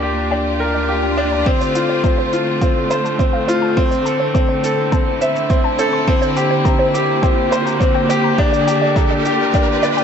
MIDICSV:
0, 0, Header, 1, 8, 480
1, 0, Start_track
1, 0, Key_signature, -1, "minor"
1, 0, Tempo, 576923
1, 1221, Time_signature, 4, 2, 24, 8
1, 8352, End_track
2, 0, Start_track
2, 0, Title_t, "Synth arpeggio sound"
2, 0, Program_c, 0, 84
2, 259, Note_on_c, 0, 79, 86
2, 314, Note_off_c, 0, 79, 0
2, 500, Note_on_c, 0, 89, 72
2, 582, Note_off_c, 0, 89, 0
2, 619, Note_on_c, 0, 74, 86
2, 653, Note_off_c, 0, 74, 0
2, 739, Note_on_c, 0, 77, 73
2, 822, Note_off_c, 0, 77, 0
2, 858, Note_on_c, 0, 79, 95
2, 914, Note_off_c, 0, 79, 0
2, 979, Note_on_c, 0, 79, 82
2, 1034, Note_off_c, 0, 79, 0
2, 1099, Note_on_c, 0, 82, 92
2, 1154, Note_off_c, 0, 82, 0
2, 1338, Note_on_c, 0, 72, 90
2, 1421, Note_off_c, 0, 72, 0
2, 1457, Note_on_c, 0, 77, 68
2, 1513, Note_off_c, 0, 77, 0
2, 1576, Note_on_c, 0, 72, 71
2, 1660, Note_off_c, 0, 72, 0
2, 1696, Note_on_c, 0, 81, 80
2, 1753, Note_off_c, 0, 81, 0
2, 1816, Note_on_c, 0, 72, 98
2, 1851, Note_off_c, 0, 72, 0
2, 2174, Note_on_c, 0, 77, 92
2, 2232, Note_off_c, 0, 77, 0
2, 2415, Note_on_c, 0, 72, 75
2, 2473, Note_off_c, 0, 72, 0
2, 2535, Note_on_c, 0, 81, 70
2, 2593, Note_off_c, 0, 81, 0
2, 2654, Note_on_c, 0, 72, 69
2, 2712, Note_off_c, 0, 72, 0
2, 2772, Note_on_c, 0, 77, 100
2, 2809, Note_off_c, 0, 77, 0
2, 2893, Note_on_c, 0, 72, 90
2, 2930, Note_off_c, 0, 72, 0
2, 3012, Note_on_c, 0, 81, 91
2, 3071, Note_off_c, 0, 81, 0
2, 3253, Note_on_c, 0, 72, 93
2, 3339, Note_off_c, 0, 72, 0
2, 3374, Note_on_c, 0, 81, 74
2, 3432, Note_off_c, 0, 81, 0
2, 3492, Note_on_c, 0, 72, 77
2, 3578, Note_off_c, 0, 72, 0
2, 3613, Note_on_c, 0, 84, 78
2, 3672, Note_off_c, 0, 84, 0
2, 3732, Note_on_c, 0, 72, 99
2, 3769, Note_off_c, 0, 72, 0
2, 4094, Note_on_c, 0, 81, 93
2, 4152, Note_off_c, 0, 81, 0
2, 4336, Note_on_c, 0, 72, 79
2, 4393, Note_off_c, 0, 72, 0
2, 4456, Note_on_c, 0, 84, 70
2, 4513, Note_off_c, 0, 84, 0
2, 4573, Note_on_c, 0, 72, 70
2, 4631, Note_off_c, 0, 72, 0
2, 4694, Note_on_c, 0, 81, 97
2, 4730, Note_off_c, 0, 81, 0
2, 4815, Note_on_c, 0, 72, 93
2, 4851, Note_off_c, 0, 72, 0
2, 4934, Note_on_c, 0, 84, 91
2, 4992, Note_off_c, 0, 84, 0
2, 5173, Note_on_c, 0, 72, 96
2, 5259, Note_off_c, 0, 72, 0
2, 5295, Note_on_c, 0, 79, 70
2, 5353, Note_off_c, 0, 79, 0
2, 5413, Note_on_c, 0, 72, 77
2, 5499, Note_off_c, 0, 72, 0
2, 5531, Note_on_c, 0, 82, 82
2, 5591, Note_off_c, 0, 82, 0
2, 5649, Note_on_c, 0, 72, 101
2, 5688, Note_off_c, 0, 72, 0
2, 6011, Note_on_c, 0, 79, 100
2, 6071, Note_off_c, 0, 79, 0
2, 6251, Note_on_c, 0, 72, 82
2, 6311, Note_off_c, 0, 72, 0
2, 6372, Note_on_c, 0, 82, 72
2, 6431, Note_off_c, 0, 82, 0
2, 6491, Note_on_c, 0, 72, 73
2, 6550, Note_off_c, 0, 72, 0
2, 6610, Note_on_c, 0, 79, 99
2, 6648, Note_off_c, 0, 79, 0
2, 6733, Note_on_c, 0, 72, 92
2, 6769, Note_off_c, 0, 72, 0
2, 6854, Note_on_c, 0, 82, 93
2, 6912, Note_off_c, 0, 82, 0
2, 7093, Note_on_c, 0, 74, 95
2, 7179, Note_off_c, 0, 74, 0
2, 7215, Note_on_c, 0, 79, 72
2, 7273, Note_off_c, 0, 79, 0
2, 7335, Note_on_c, 0, 74, 79
2, 7420, Note_off_c, 0, 74, 0
2, 7454, Note_on_c, 0, 82, 81
2, 7512, Note_off_c, 0, 82, 0
2, 7574, Note_on_c, 0, 74, 93
2, 7610, Note_off_c, 0, 74, 0
2, 7935, Note_on_c, 0, 79, 92
2, 7992, Note_off_c, 0, 79, 0
2, 8176, Note_on_c, 0, 74, 98
2, 8211, Note_off_c, 0, 74, 0
2, 8296, Note_on_c, 0, 79, 98
2, 8352, Note_off_c, 0, 79, 0
2, 8352, End_track
3, 0, Start_track
3, 0, Title_t, "Grand piano"
3, 0, Program_c, 1, 0
3, 0, Control_c, 1, 64, 127
3, 0, Note_on_c, 1, 62, 66
3, 0, Note_on_c, 1, 67, 61
3, 20, Note_off_c, 1, 67, 0
3, 20, Note_on_c, 1, 67, 63
3, 248, Note_off_c, 1, 67, 0
3, 258, Note_off_c, 1, 62, 0
3, 258, Note_on_c, 1, 62, 67
3, 396, Note_off_c, 1, 62, 0
3, 497, Note_on_c, 1, 70, 66
3, 727, Note_off_c, 1, 70, 0
3, 737, Note_on_c, 1, 67, 64
3, 967, Note_off_c, 1, 67, 0
3, 977, Note_on_c, 1, 62, 89
3, 1207, Note_off_c, 1, 62, 0
3, 1219, Note_on_c, 1, 60, 93
3, 1230, Control_c, 1, 64, 0
3, 1396, Control_c, 1, 64, 127
3, 1448, Note_off_c, 1, 60, 0
3, 1458, Note_on_c, 1, 65, 65
3, 1596, Note_off_c, 1, 65, 0
3, 1697, Note_on_c, 1, 60, 66
3, 1927, Note_off_c, 1, 60, 0
3, 1938, Note_on_c, 1, 65, 65
3, 2167, Note_off_c, 1, 65, 0
3, 2178, Note_on_c, 1, 60, 65
3, 2316, Note_off_c, 1, 60, 0
3, 2418, Note_on_c, 1, 72, 67
3, 2647, Note_off_c, 1, 72, 0
3, 2658, Note_on_c, 1, 60, 68
3, 2796, Note_off_c, 1, 60, 0
3, 2898, Note_on_c, 1, 65, 95
3, 3127, Note_off_c, 1, 65, 0
3, 3139, Note_on_c, 1, 60, 94
3, 3152, Control_c, 1, 64, 0
3, 3318, Control_c, 1, 64, 127
3, 3368, Note_off_c, 1, 60, 0
3, 3381, Note_on_c, 1, 69, 60
3, 3518, Note_off_c, 1, 69, 0
3, 3617, Note_on_c, 1, 60, 71
3, 3847, Note_off_c, 1, 60, 0
3, 3860, Note_on_c, 1, 69, 69
3, 4088, Note_off_c, 1, 69, 0
3, 4098, Note_on_c, 1, 60, 64
3, 4236, Note_off_c, 1, 60, 0
3, 4338, Note_on_c, 1, 76, 67
3, 4567, Note_off_c, 1, 76, 0
3, 4576, Note_on_c, 1, 60, 69
3, 4715, Note_off_c, 1, 60, 0
3, 4816, Note_on_c, 1, 69, 92
3, 5046, Note_off_c, 1, 69, 0
3, 5057, Note_on_c, 1, 60, 92
3, 5072, Control_c, 1, 64, 0
3, 5192, Control_c, 1, 64, 127
3, 5287, Note_off_c, 1, 60, 0
3, 5296, Note_on_c, 1, 67, 71
3, 5435, Note_off_c, 1, 67, 0
3, 5537, Note_on_c, 1, 60, 71
3, 5766, Note_off_c, 1, 60, 0
3, 5777, Note_on_c, 1, 67, 70
3, 6007, Note_off_c, 1, 67, 0
3, 6016, Note_on_c, 1, 60, 74
3, 6155, Note_off_c, 1, 60, 0
3, 6258, Note_on_c, 1, 72, 70
3, 6487, Note_off_c, 1, 72, 0
3, 6499, Note_on_c, 1, 60, 71
3, 6636, Note_off_c, 1, 60, 0
3, 6738, Note_on_c, 1, 67, 95
3, 6967, Note_off_c, 1, 67, 0
3, 6976, Note_on_c, 1, 62, 94
3, 6992, Control_c, 1, 64, 0
3, 7138, Control_c, 1, 64, 127
3, 7206, Note_off_c, 1, 62, 0
3, 7218, Note_on_c, 1, 67, 67
3, 7356, Note_off_c, 1, 67, 0
3, 7457, Note_on_c, 1, 62, 65
3, 7686, Note_off_c, 1, 62, 0
3, 7697, Note_on_c, 1, 67, 71
3, 7927, Note_off_c, 1, 67, 0
3, 7938, Note_on_c, 1, 62, 67
3, 8076, Note_off_c, 1, 62, 0
3, 8178, Note_on_c, 1, 74, 64
3, 8352, Note_off_c, 1, 74, 0
3, 8352, End_track
4, 0, Start_track
4, 0, Title_t, "String section"
4, 0, Program_c, 2, 48
4, 0, Note_on_c, 2, 58, 76
4, 0, Note_on_c, 2, 65, 77
4, 0, Note_on_c, 2, 67, 61
4, 1216, Note_on_c, 2, 50, 68
4, 1218, Note_off_c, 2, 58, 0
4, 1304, Note_on_c, 2, 57, 80
4, 1970, Note_on_c, 2, 60, 64
4, 1987, Note_off_c, 2, 67, 0
4, 3138, Note_off_c, 2, 65, 0
4, 4004, Note_on_c, 2, 64, 61
4, 5056, Note_off_c, 2, 57, 0
4, 5286, Note_on_c, 2, 58, 78
4, 5828, Note_off_c, 2, 60, 0
4, 5918, Note_on_c, 2, 67, 69
4, 6980, Note_off_c, 2, 64, 0
4, 7651, Note_on_c, 2, 65, 73
4, 8352, Note_off_c, 2, 50, 0
4, 8352, Note_off_c, 2, 58, 0
4, 8352, Note_off_c, 2, 65, 0
4, 8352, Note_off_c, 2, 67, 0
4, 8352, End_track
5, 0, Start_track
5, 0, Title_t, "Analog synth bass"
5, 0, Program_c, 3, 38
5, 0, Note_on_c, 3, 38, 78
5, 1196, Note_off_c, 3, 38, 0
5, 8352, End_track
6, 0, Start_track
6, 0, Title_t, "Riser"
6, 0, Program_c, 4, 103
6, 1219, Note_on_c, 4, 60, 71
6, 8352, Note_off_c, 4, 60, 0
6, 8352, End_track
7, 0, Start_track
7, 0, Title_t, "Swell"
7, 0, Program_c, 5, 103
7, 260, Note_on_c, 5, 60, 64
7, 1220, Note_off_c, 5, 60, 0
7, 8352, End_track
8, 0, Start_track
8, 0, Title_t, "Drums"
8, 1217, Note_on_c, 9, 36, 94
8, 1300, Note_off_c, 9, 36, 0
8, 1341, Note_on_c, 9, 82, 35
8, 1424, Note_off_c, 9, 82, 0
8, 1459, Note_on_c, 9, 82, 57
8, 1542, Note_off_c, 9, 82, 0
8, 1696, Note_on_c, 9, 36, 94
8, 1699, Note_on_c, 9, 82, 34
8, 1780, Note_off_c, 9, 36, 0
8, 1782, Note_off_c, 9, 82, 0
8, 1938, Note_on_c, 9, 82, 51
8, 2022, Note_off_c, 9, 82, 0
8, 2176, Note_on_c, 9, 36, 94
8, 2177, Note_on_c, 9, 82, 35
8, 2259, Note_off_c, 9, 36, 0
8, 2260, Note_off_c, 9, 82, 0
8, 2419, Note_on_c, 9, 82, 47
8, 2503, Note_off_c, 9, 82, 0
8, 2541, Note_on_c, 9, 82, 25
8, 2625, Note_off_c, 9, 82, 0
8, 2656, Note_on_c, 9, 36, 89
8, 2662, Note_on_c, 9, 82, 37
8, 2740, Note_off_c, 9, 36, 0
8, 2745, Note_off_c, 9, 82, 0
8, 2903, Note_on_c, 9, 82, 55
8, 2986, Note_off_c, 9, 82, 0
8, 3136, Note_on_c, 9, 36, 94
8, 3220, Note_off_c, 9, 36, 0
8, 3260, Note_on_c, 9, 82, 37
8, 3343, Note_off_c, 9, 82, 0
8, 3380, Note_on_c, 9, 82, 56
8, 3463, Note_off_c, 9, 82, 0
8, 3617, Note_on_c, 9, 36, 100
8, 3620, Note_on_c, 9, 82, 37
8, 3700, Note_off_c, 9, 36, 0
8, 3703, Note_off_c, 9, 82, 0
8, 3860, Note_on_c, 9, 82, 56
8, 3943, Note_off_c, 9, 82, 0
8, 4097, Note_on_c, 9, 36, 98
8, 4099, Note_on_c, 9, 82, 38
8, 4180, Note_off_c, 9, 36, 0
8, 4182, Note_off_c, 9, 82, 0
8, 4340, Note_on_c, 9, 82, 51
8, 4423, Note_off_c, 9, 82, 0
8, 4460, Note_on_c, 9, 82, 24
8, 4543, Note_off_c, 9, 82, 0
8, 4576, Note_on_c, 9, 36, 101
8, 4577, Note_on_c, 9, 82, 40
8, 4659, Note_off_c, 9, 36, 0
8, 4660, Note_off_c, 9, 82, 0
8, 4816, Note_on_c, 9, 82, 59
8, 4899, Note_off_c, 9, 82, 0
8, 5055, Note_on_c, 9, 36, 93
8, 5138, Note_off_c, 9, 36, 0
8, 5176, Note_on_c, 9, 82, 38
8, 5259, Note_off_c, 9, 82, 0
8, 5297, Note_on_c, 9, 82, 63
8, 5380, Note_off_c, 9, 82, 0
8, 5535, Note_on_c, 9, 36, 102
8, 5538, Note_on_c, 9, 82, 39
8, 5618, Note_off_c, 9, 36, 0
8, 5621, Note_off_c, 9, 82, 0
8, 5782, Note_on_c, 9, 82, 53
8, 5865, Note_off_c, 9, 82, 0
8, 6015, Note_on_c, 9, 36, 100
8, 6021, Note_on_c, 9, 82, 40
8, 6098, Note_off_c, 9, 36, 0
8, 6104, Note_off_c, 9, 82, 0
8, 6259, Note_on_c, 9, 82, 53
8, 6343, Note_off_c, 9, 82, 0
8, 6380, Note_on_c, 9, 82, 28
8, 6463, Note_off_c, 9, 82, 0
8, 6495, Note_on_c, 9, 36, 97
8, 6499, Note_on_c, 9, 82, 41
8, 6578, Note_off_c, 9, 36, 0
8, 6582, Note_off_c, 9, 82, 0
8, 6739, Note_on_c, 9, 82, 63
8, 6822, Note_off_c, 9, 82, 0
8, 6975, Note_on_c, 9, 36, 97
8, 7059, Note_off_c, 9, 36, 0
8, 7102, Note_on_c, 9, 82, 36
8, 7185, Note_off_c, 9, 82, 0
8, 7220, Note_on_c, 9, 82, 59
8, 7303, Note_off_c, 9, 82, 0
8, 7456, Note_on_c, 9, 36, 99
8, 7460, Note_on_c, 9, 82, 36
8, 7539, Note_off_c, 9, 36, 0
8, 7543, Note_off_c, 9, 82, 0
8, 7699, Note_on_c, 9, 82, 53
8, 7782, Note_off_c, 9, 82, 0
8, 7937, Note_on_c, 9, 36, 96
8, 7941, Note_on_c, 9, 82, 38
8, 8020, Note_off_c, 9, 36, 0
8, 8024, Note_off_c, 9, 82, 0
8, 8180, Note_on_c, 9, 82, 53
8, 8263, Note_off_c, 9, 82, 0
8, 8301, Note_on_c, 9, 82, 27
8, 8352, Note_off_c, 9, 82, 0
8, 8352, End_track
0, 0, End_of_file